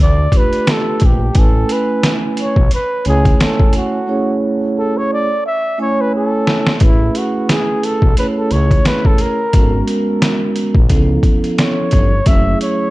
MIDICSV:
0, 0, Header, 1, 5, 480
1, 0, Start_track
1, 0, Key_signature, 3, "major"
1, 0, Tempo, 681818
1, 954, Time_signature, 4, 2, 24, 8
1, 9083, End_track
2, 0, Start_track
2, 0, Title_t, "Flugelhorn"
2, 0, Program_c, 0, 56
2, 15, Note_on_c, 0, 74, 97
2, 262, Note_on_c, 0, 71, 101
2, 273, Note_off_c, 0, 74, 0
2, 500, Note_on_c, 0, 69, 92
2, 510, Note_off_c, 0, 71, 0
2, 742, Note_on_c, 0, 67, 89
2, 752, Note_off_c, 0, 69, 0
2, 981, Note_on_c, 0, 69, 104
2, 992, Note_off_c, 0, 67, 0
2, 1216, Note_on_c, 0, 71, 90
2, 1226, Note_off_c, 0, 69, 0
2, 1502, Note_off_c, 0, 71, 0
2, 1700, Note_on_c, 0, 73, 88
2, 1911, Note_off_c, 0, 73, 0
2, 1931, Note_on_c, 0, 71, 93
2, 2146, Note_off_c, 0, 71, 0
2, 2170, Note_on_c, 0, 68, 90
2, 2414, Note_on_c, 0, 69, 84
2, 2424, Note_off_c, 0, 68, 0
2, 2644, Note_off_c, 0, 69, 0
2, 2656, Note_on_c, 0, 66, 82
2, 3097, Note_off_c, 0, 66, 0
2, 3370, Note_on_c, 0, 69, 87
2, 3503, Note_on_c, 0, 73, 96
2, 3514, Note_off_c, 0, 69, 0
2, 3600, Note_off_c, 0, 73, 0
2, 3613, Note_on_c, 0, 74, 101
2, 3827, Note_off_c, 0, 74, 0
2, 3846, Note_on_c, 0, 76, 101
2, 4064, Note_off_c, 0, 76, 0
2, 4091, Note_on_c, 0, 73, 99
2, 4233, Note_on_c, 0, 71, 89
2, 4243, Note_off_c, 0, 73, 0
2, 4324, Note_off_c, 0, 71, 0
2, 4333, Note_on_c, 0, 69, 86
2, 4775, Note_off_c, 0, 69, 0
2, 4819, Note_on_c, 0, 64, 89
2, 5054, Note_on_c, 0, 66, 77
2, 5064, Note_off_c, 0, 64, 0
2, 5290, Note_on_c, 0, 68, 80
2, 5300, Note_off_c, 0, 66, 0
2, 5528, Note_on_c, 0, 69, 86
2, 5538, Note_off_c, 0, 68, 0
2, 5759, Note_off_c, 0, 69, 0
2, 5763, Note_on_c, 0, 71, 94
2, 5823, Note_off_c, 0, 71, 0
2, 5903, Note_on_c, 0, 69, 91
2, 6000, Note_on_c, 0, 73, 108
2, 6011, Note_off_c, 0, 69, 0
2, 6242, Note_on_c, 0, 71, 94
2, 6253, Note_off_c, 0, 73, 0
2, 6382, Note_on_c, 0, 69, 91
2, 6393, Note_off_c, 0, 71, 0
2, 6489, Note_on_c, 0, 70, 88
2, 6499, Note_off_c, 0, 69, 0
2, 6961, Note_off_c, 0, 70, 0
2, 8166, Note_on_c, 0, 73, 97
2, 8643, Note_on_c, 0, 76, 115
2, 8654, Note_off_c, 0, 73, 0
2, 8878, Note_off_c, 0, 76, 0
2, 8886, Note_on_c, 0, 73, 99
2, 9083, Note_off_c, 0, 73, 0
2, 9083, End_track
3, 0, Start_track
3, 0, Title_t, "Vibraphone"
3, 0, Program_c, 1, 11
3, 222, Note_on_c, 1, 57, 62
3, 226, Note_on_c, 1, 62, 57
3, 229, Note_on_c, 1, 65, 59
3, 233, Note_on_c, 1, 67, 62
3, 238, Note_on_c, 1, 71, 79
3, 857, Note_off_c, 1, 57, 0
3, 859, Note_off_c, 1, 62, 0
3, 860, Note_off_c, 1, 65, 0
3, 862, Note_off_c, 1, 67, 0
3, 865, Note_off_c, 1, 71, 0
3, 940, Note_on_c, 1, 57, 68
3, 941, Note_on_c, 1, 61, 67
3, 948, Note_on_c, 1, 64, 62
3, 950, Note_on_c, 1, 80, 71
3, 953, Note_on_c, 1, 71, 78
3, 1779, Note_off_c, 1, 57, 0
3, 1779, Note_off_c, 1, 61, 0
3, 1782, Note_off_c, 1, 64, 0
3, 1783, Note_off_c, 1, 80, 0
3, 1785, Note_off_c, 1, 71, 0
3, 2145, Note_on_c, 1, 57, 70
3, 2147, Note_on_c, 1, 61, 63
3, 2150, Note_on_c, 1, 64, 60
3, 2154, Note_on_c, 1, 80, 67
3, 2158, Note_on_c, 1, 73, 74
3, 2778, Note_off_c, 1, 57, 0
3, 2779, Note_off_c, 1, 61, 0
3, 2780, Note_off_c, 1, 64, 0
3, 2783, Note_off_c, 1, 80, 0
3, 2784, Note_off_c, 1, 73, 0
3, 2865, Note_on_c, 1, 57, 69
3, 2870, Note_on_c, 1, 61, 67
3, 2873, Note_on_c, 1, 64, 69
3, 2878, Note_on_c, 1, 68, 69
3, 2879, Note_on_c, 1, 73, 78
3, 3701, Note_off_c, 1, 57, 0
3, 3703, Note_off_c, 1, 61, 0
3, 3705, Note_off_c, 1, 64, 0
3, 3708, Note_off_c, 1, 68, 0
3, 3708, Note_off_c, 1, 73, 0
3, 4067, Note_on_c, 1, 57, 71
3, 4068, Note_on_c, 1, 61, 62
3, 4071, Note_on_c, 1, 64, 59
3, 4078, Note_on_c, 1, 80, 65
3, 4082, Note_on_c, 1, 73, 72
3, 4699, Note_off_c, 1, 57, 0
3, 4699, Note_off_c, 1, 61, 0
3, 4701, Note_off_c, 1, 64, 0
3, 4704, Note_off_c, 1, 80, 0
3, 4706, Note_off_c, 1, 73, 0
3, 4785, Note_on_c, 1, 57, 62
3, 4787, Note_on_c, 1, 61, 63
3, 4792, Note_on_c, 1, 64, 62
3, 4794, Note_on_c, 1, 68, 62
3, 4797, Note_on_c, 1, 71, 75
3, 5621, Note_off_c, 1, 57, 0
3, 5622, Note_off_c, 1, 61, 0
3, 5624, Note_off_c, 1, 64, 0
3, 5625, Note_off_c, 1, 68, 0
3, 5627, Note_off_c, 1, 71, 0
3, 5746, Note_on_c, 1, 57, 72
3, 5751, Note_on_c, 1, 61, 64
3, 5754, Note_on_c, 1, 64, 67
3, 5757, Note_on_c, 1, 68, 61
3, 5760, Note_on_c, 1, 73, 75
3, 6581, Note_off_c, 1, 57, 0
3, 6584, Note_off_c, 1, 61, 0
3, 6585, Note_off_c, 1, 64, 0
3, 6587, Note_off_c, 1, 68, 0
3, 6589, Note_off_c, 1, 73, 0
3, 6705, Note_on_c, 1, 56, 68
3, 6707, Note_on_c, 1, 59, 65
3, 6711, Note_on_c, 1, 61, 66
3, 6714, Note_on_c, 1, 66, 61
3, 6718, Note_on_c, 1, 69, 63
3, 6764, Note_on_c, 1, 70, 75
3, 6768, Note_off_c, 1, 69, 0
3, 7541, Note_off_c, 1, 56, 0
3, 7542, Note_off_c, 1, 59, 0
3, 7544, Note_off_c, 1, 61, 0
3, 7546, Note_off_c, 1, 66, 0
3, 7570, Note_off_c, 1, 70, 0
3, 7667, Note_on_c, 1, 53, 87
3, 7671, Note_on_c, 1, 59, 75
3, 7672, Note_on_c, 1, 61, 75
3, 7677, Note_on_c, 1, 64, 76
3, 7680, Note_on_c, 1, 69, 90
3, 8502, Note_off_c, 1, 53, 0
3, 8504, Note_off_c, 1, 59, 0
3, 8504, Note_off_c, 1, 61, 0
3, 8507, Note_off_c, 1, 64, 0
3, 8508, Note_off_c, 1, 69, 0
3, 8622, Note_on_c, 1, 54, 73
3, 8627, Note_on_c, 1, 57, 60
3, 8632, Note_on_c, 1, 61, 62
3, 8633, Note_on_c, 1, 64, 64
3, 8637, Note_on_c, 1, 68, 73
3, 9083, Note_off_c, 1, 54, 0
3, 9083, Note_off_c, 1, 57, 0
3, 9083, Note_off_c, 1, 61, 0
3, 9083, Note_off_c, 1, 64, 0
3, 9083, Note_off_c, 1, 68, 0
3, 9083, End_track
4, 0, Start_track
4, 0, Title_t, "FM bass"
4, 0, Program_c, 2, 39
4, 0, Note_on_c, 2, 38, 96
4, 194, Note_off_c, 2, 38, 0
4, 720, Note_on_c, 2, 34, 79
4, 917, Note_off_c, 2, 34, 0
4, 956, Note_on_c, 2, 33, 100
4, 1155, Note_off_c, 2, 33, 0
4, 1807, Note_on_c, 2, 35, 102
4, 1894, Note_off_c, 2, 35, 0
4, 2155, Note_on_c, 2, 37, 88
4, 2354, Note_off_c, 2, 37, 0
4, 4796, Note_on_c, 2, 33, 94
4, 4995, Note_off_c, 2, 33, 0
4, 5649, Note_on_c, 2, 35, 95
4, 5735, Note_off_c, 2, 35, 0
4, 5994, Note_on_c, 2, 37, 81
4, 6194, Note_off_c, 2, 37, 0
4, 6715, Note_on_c, 2, 32, 100
4, 6914, Note_off_c, 2, 32, 0
4, 7568, Note_on_c, 2, 34, 88
4, 7675, Note_on_c, 2, 37, 98
4, 7685, Note_off_c, 2, 34, 0
4, 7874, Note_off_c, 2, 37, 0
4, 8399, Note_on_c, 2, 31, 84
4, 8597, Note_off_c, 2, 31, 0
4, 8636, Note_on_c, 2, 30, 109
4, 8835, Note_off_c, 2, 30, 0
4, 9083, End_track
5, 0, Start_track
5, 0, Title_t, "Drums"
5, 225, Note_on_c, 9, 36, 83
5, 229, Note_on_c, 9, 42, 57
5, 295, Note_off_c, 9, 36, 0
5, 299, Note_off_c, 9, 42, 0
5, 371, Note_on_c, 9, 42, 47
5, 441, Note_off_c, 9, 42, 0
5, 473, Note_on_c, 9, 42, 82
5, 475, Note_on_c, 9, 38, 104
5, 543, Note_off_c, 9, 42, 0
5, 545, Note_off_c, 9, 38, 0
5, 702, Note_on_c, 9, 42, 71
5, 716, Note_on_c, 9, 36, 97
5, 772, Note_off_c, 9, 42, 0
5, 787, Note_off_c, 9, 36, 0
5, 948, Note_on_c, 9, 42, 86
5, 953, Note_on_c, 9, 36, 118
5, 1019, Note_off_c, 9, 42, 0
5, 1023, Note_off_c, 9, 36, 0
5, 1191, Note_on_c, 9, 42, 78
5, 1262, Note_off_c, 9, 42, 0
5, 1432, Note_on_c, 9, 38, 116
5, 1433, Note_on_c, 9, 42, 88
5, 1502, Note_off_c, 9, 38, 0
5, 1503, Note_off_c, 9, 42, 0
5, 1669, Note_on_c, 9, 42, 66
5, 1739, Note_off_c, 9, 42, 0
5, 1804, Note_on_c, 9, 36, 94
5, 1875, Note_off_c, 9, 36, 0
5, 1907, Note_on_c, 9, 42, 85
5, 1978, Note_off_c, 9, 42, 0
5, 2147, Note_on_c, 9, 42, 56
5, 2217, Note_off_c, 9, 42, 0
5, 2290, Note_on_c, 9, 36, 81
5, 2291, Note_on_c, 9, 42, 45
5, 2361, Note_off_c, 9, 36, 0
5, 2361, Note_off_c, 9, 42, 0
5, 2396, Note_on_c, 9, 42, 82
5, 2398, Note_on_c, 9, 38, 102
5, 2466, Note_off_c, 9, 42, 0
5, 2469, Note_off_c, 9, 38, 0
5, 2531, Note_on_c, 9, 36, 89
5, 2601, Note_off_c, 9, 36, 0
5, 2624, Note_on_c, 9, 42, 70
5, 2694, Note_off_c, 9, 42, 0
5, 4557, Note_on_c, 9, 38, 87
5, 4627, Note_off_c, 9, 38, 0
5, 4693, Note_on_c, 9, 38, 92
5, 4763, Note_off_c, 9, 38, 0
5, 4788, Note_on_c, 9, 42, 82
5, 4794, Note_on_c, 9, 36, 118
5, 4859, Note_off_c, 9, 42, 0
5, 4864, Note_off_c, 9, 36, 0
5, 5033, Note_on_c, 9, 42, 75
5, 5104, Note_off_c, 9, 42, 0
5, 5275, Note_on_c, 9, 38, 105
5, 5276, Note_on_c, 9, 42, 84
5, 5345, Note_off_c, 9, 38, 0
5, 5346, Note_off_c, 9, 42, 0
5, 5515, Note_on_c, 9, 42, 68
5, 5586, Note_off_c, 9, 42, 0
5, 5646, Note_on_c, 9, 36, 96
5, 5716, Note_off_c, 9, 36, 0
5, 5752, Note_on_c, 9, 42, 84
5, 5822, Note_off_c, 9, 42, 0
5, 5989, Note_on_c, 9, 42, 59
5, 6059, Note_off_c, 9, 42, 0
5, 6131, Note_on_c, 9, 36, 86
5, 6134, Note_on_c, 9, 42, 41
5, 6201, Note_off_c, 9, 36, 0
5, 6204, Note_off_c, 9, 42, 0
5, 6232, Note_on_c, 9, 42, 83
5, 6234, Note_on_c, 9, 38, 96
5, 6302, Note_off_c, 9, 42, 0
5, 6305, Note_off_c, 9, 38, 0
5, 6370, Note_on_c, 9, 36, 85
5, 6441, Note_off_c, 9, 36, 0
5, 6465, Note_on_c, 9, 42, 67
5, 6535, Note_off_c, 9, 42, 0
5, 6711, Note_on_c, 9, 42, 82
5, 6714, Note_on_c, 9, 36, 111
5, 6781, Note_off_c, 9, 42, 0
5, 6784, Note_off_c, 9, 36, 0
5, 6952, Note_on_c, 9, 42, 76
5, 7023, Note_off_c, 9, 42, 0
5, 7195, Note_on_c, 9, 38, 114
5, 7196, Note_on_c, 9, 42, 87
5, 7265, Note_off_c, 9, 38, 0
5, 7266, Note_off_c, 9, 42, 0
5, 7432, Note_on_c, 9, 42, 68
5, 7502, Note_off_c, 9, 42, 0
5, 7565, Note_on_c, 9, 36, 93
5, 7635, Note_off_c, 9, 36, 0
5, 7670, Note_on_c, 9, 42, 84
5, 7672, Note_on_c, 9, 36, 89
5, 7740, Note_off_c, 9, 42, 0
5, 7743, Note_off_c, 9, 36, 0
5, 7906, Note_on_c, 9, 36, 79
5, 7908, Note_on_c, 9, 42, 52
5, 7976, Note_off_c, 9, 36, 0
5, 7979, Note_off_c, 9, 42, 0
5, 8053, Note_on_c, 9, 42, 44
5, 8123, Note_off_c, 9, 42, 0
5, 8155, Note_on_c, 9, 42, 87
5, 8157, Note_on_c, 9, 38, 101
5, 8225, Note_off_c, 9, 42, 0
5, 8227, Note_off_c, 9, 38, 0
5, 8385, Note_on_c, 9, 42, 67
5, 8397, Note_on_c, 9, 36, 85
5, 8456, Note_off_c, 9, 42, 0
5, 8467, Note_off_c, 9, 36, 0
5, 8630, Note_on_c, 9, 42, 83
5, 8634, Note_on_c, 9, 36, 107
5, 8700, Note_off_c, 9, 42, 0
5, 8705, Note_off_c, 9, 36, 0
5, 8876, Note_on_c, 9, 42, 74
5, 8947, Note_off_c, 9, 42, 0
5, 9083, End_track
0, 0, End_of_file